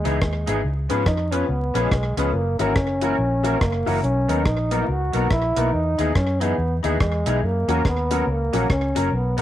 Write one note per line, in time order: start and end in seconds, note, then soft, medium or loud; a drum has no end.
0.00 0.17 E3 medium
0.00 0.49 G#3 medium
0.05 0.19 C#2 medium
0.05 0.18 B3 medium
0.05 0.17 D#4 medium
0.05 0.18 D#4 medium
0.05 0.18 E4 medium
0.05 0.18 G#4 loud
0.05 0.18 G#4 medium
0.05 closed hi-hat medium
0.21 0.44 D#2 medium
0.21 kick loud
0.21 cross-stick loud
0.46 0.62 G#1 medium
0.46 0.60 E3 medium
0.46 0.60 B3 medium
0.46 0.60 D#4 medium
0.46 0.60 E4 medium
0.46 0.60 G#4 medium
0.46 0.60 G#4 loud
0.46 closed hi-hat loud
0.65 0.86 C#2 loud
0.89 1.05 G#2 medium
0.89 1.02 F3 medium
0.89 1.02 B3 medium
0.89 1.02 C#4 medium
0.89 1.03 C#4 medium
0.89 1.03 F4 medium
0.89 1.03 G#4 medium
0.89 1.03 B4 loud
0.89 closed hi-hat medium
1.06 1.43 F2 medium
1.06 1.33 D#4 medium
1.06 kick loud
1.06 cross-stick loud
1.31 1.44 F3 medium
1.31 1.45 B3 medium
1.31 1.50 C#4 medium
1.31 1.45 C#4 medium
1.31 1.45 F4 medium
1.31 1.45 G#4 medium
1.31 1.45 B4 medium
1.31 closed hi-hat loud
1.49 1.71 C#2 medium
1.49 1.84 B3 medium
1.74 1.89 A#1 medium
1.74 1.87 F3 medium
1.74 1.88 B3 medium
1.74 1.87 C#4 medium
1.74 1.88 C#4 medium
1.74 1.87 F4 medium
1.74 1.88 G#4 loud
1.74 1.88 B4 loud
1.74 closed hi-hat medium
1.82 2.17 G#3 medium
1.91 2.14 B1 medium
1.91 kick loud
1.91 cross-stick loud
2.17 2.31 C#2 medium
2.17 2.30 F3 medium
2.17 2.35 G#3 medium
2.17 2.30 B3 medium
2.17 2.30 C#4 medium
2.17 2.30 F4 medium
2.17 2.30 G#4 medium
2.17 2.30 B4 medium
2.17 closed hi-hat loud
2.34 2.56 F#1 loud
2.34 2.59 A#3 medium
2.59 2.76 G#1 medium
2.59 2.72 E3 medium
2.59 2.73 A#3 medium
2.59 3.64 C#4 medium
2.59 2.73 C#4 medium
2.59 2.72 E4 medium
2.59 2.72 F#4 medium
2.59 2.73 F#4 medium
2.59 2.73 A#4 loud
2.59 closed hi-hat medium
2.76 3.12 F#1 medium
2.76 kick loud
2.76 cross-stick loud
3.01 3.15 E3 medium
3.01 3.15 A#3 medium
3.01 3.15 C#4 medium
3.01 3.15 E4 medium
3.01 3.15 F#4 medium
3.01 3.16 F#4 loud
3.01 3.15 A#4 medium
3.01 closed hi-hat loud
3.18 3.55 A#1 loud
3.43 3.57 E3 medium
3.43 3.57 A#3 medium
3.43 3.57 C#4 medium
3.43 3.56 E4 medium
3.43 3.57 F#4 medium
3.43 3.58 F#4 medium
3.43 3.57 A#4 loud
3.43 closed hi-hat medium
3.61 3.83 F#1 medium
3.61 4.02 A#3 medium
3.61 kick loud
3.61 cross-stick loud
3.86 4.01 F#1 medium
3.86 3.99 E3 medium
3.86 3.99 A#3 medium
3.86 4.00 C#4 medium
3.86 3.99 E4 medium
3.86 3.99 F#4 medium
3.86 4.00 F#4 medium
3.86 3.99 A#4 loud
3.86 open hi-hat medium
4.03 4.25 B1 loud
4.03 4.47 C#4 loud
4.03 hi-hat pedal medium
4.28 4.43 D#2 medium
4.28 4.41 F#3 medium
4.28 4.42 A#3 medium
4.28 4.41 B3 medium
4.28 4.42 D#4 medium
4.28 4.42 F#4 medium
4.28 4.42 A#4 medium
4.28 closed hi-hat medium
4.45 4.82 A#1 medium
4.45 4.91 D#4 medium
4.45 kick loud
4.45 cross-stick loud
4.71 4.84 F#3 medium
4.71 4.84 A#3 medium
4.71 4.84 B3 medium
4.71 4.84 D#4 medium
4.71 4.85 F#4 medium
4.71 4.84 A#4 medium
4.71 closed hi-hat loud
4.88 5.10 C#2 medium
4.88 5.31 F#4 loud
5.12 5.28 B1 medium
5.12 5.26 F#3 medium
5.12 5.26 A#3 medium
5.12 5.27 B3 medium
5.12 5.26 D#4 medium
5.12 5.27 D#4 medium
5.12 5.27 F#4 medium
5.12 5.27 A#4 loud
5.12 closed hi-hat medium
5.31 5.53 A#1 medium
5.31 5.74 E4 loud
5.31 kick loud
5.31 cross-stick loud
5.56 5.71 B1 medium
5.56 5.69 F#3 medium
5.56 5.69 A#3 medium
5.56 5.69 B3 medium
5.56 5.69 D#4 medium
5.56 5.69 F#4 medium
5.56 5.69 A#4 loud
5.56 closed hi-hat loud
5.73 5.95 E2 loud
5.73 6.14 D#4 loud
5.98 6.13 D#2 medium
5.98 6.11 E3 medium
5.98 6.12 B3 medium
5.98 6.11 D#4 medium
5.98 6.12 D#4 medium
5.98 6.11 E4 medium
5.98 6.12 G#4 loud
5.98 6.12 G#4 medium
5.98 closed hi-hat medium
6.15 6.52 F#2 medium
6.15 6.42 C#4 medium
6.15 kick loud
6.15 cross-stick loud
6.40 6.54 E3 medium
6.40 6.76 B3 loud
6.40 6.54 B3 medium
6.40 6.53 D#4 medium
6.40 6.54 D#4 medium
6.40 6.54 E4 medium
6.40 6.54 G#4 loud
6.40 6.55 G#4 medium
6.40 closed hi-hat loud
6.58 6.80 E2 medium
6.83 6.98 D#2 medium
6.83 6.96 E3 medium
6.83 6.96 B3 medium
6.83 6.96 D#4 medium
6.83 6.97 D#4 medium
6.83 6.96 E4 medium
6.83 6.96 G#4 loud
6.83 6.97 G#4 medium
6.83 closed hi-hat medium
7.00 7.23 E2 medium
7.00 7.47 G#3 medium
7.00 kick loud
7.00 cross-stick loud
7.26 7.40 B1 medium
7.26 7.39 E3 medium
7.26 7.39 B3 medium
7.26 7.39 D#4 medium
7.26 7.39 E4 medium
7.26 7.39 G#4 loud
7.26 7.39 G#4 medium
7.26 closed hi-hat loud
7.43 7.65 F#2 loud
7.43 7.86 A#3 medium
7.68 7.82 E2 medium
7.68 7.81 F#3 medium
7.68 7.81 A#3 medium
7.68 7.81 C#4 medium
7.68 7.81 F#4 medium
7.68 7.81 A#4 loud
7.68 closed hi-hat medium
7.85 8.21 D#2 medium
7.85 8.32 B3 medium
7.85 kick loud
7.85 cross-stick loud
8.10 8.23 F#3 medium
8.10 8.24 A#3 medium
8.10 8.23 C#4 medium
8.10 8.24 C#4 medium
8.10 8.23 F#4 medium
8.10 8.24 F#4 medium
8.10 8.24 A#4 medium
8.10 closed hi-hat loud
8.27 8.49 C#2 medium
8.27 8.71 A#3 medium
8.53 8.67 A#1 medium
8.53 8.65 F#3 medium
8.53 8.65 A#3 medium
8.53 8.65 C#4 medium
8.53 8.66 C#4 medium
8.53 8.66 F#4 medium
8.53 8.66 A#4 loud
8.53 closed hi-hat medium
8.70 8.92 C#2 medium
8.70 9.07 C#4 medium
8.70 kick loud
8.70 cross-stick loud
8.95 9.10 F#1 medium
8.95 9.08 F#3 medium
8.95 9.08 A#3 medium
8.95 9.08 C#4 medium
8.95 9.08 F#4 medium
8.95 9.09 F#4 medium
8.95 9.08 A#4 loud
8.95 closed hi-hat loud
9.07 9.16 C#4 medium
9.12 9.34 B1 loud
9.12 9.42 B3 medium
9.37 9.42 G#1 medium
9.37 9.42 F#3 medium
9.37 9.42 A#3 medium
9.37 9.42 B3 medium
9.37 9.42 D#4 medium
9.37 9.42 A#4 loud
9.37 closed hi-hat medium